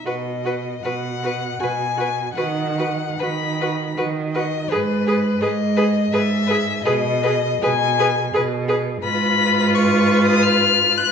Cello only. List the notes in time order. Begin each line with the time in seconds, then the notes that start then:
0.05 B2
0.83 B2
1.61 B2
2.36 D#3
3.20 D#3
3.97 D#3
4.71 G#2
5.41 G#2
6.11 G#2
6.83 B2
7.61 B2
8.34 B2
9.03 G#2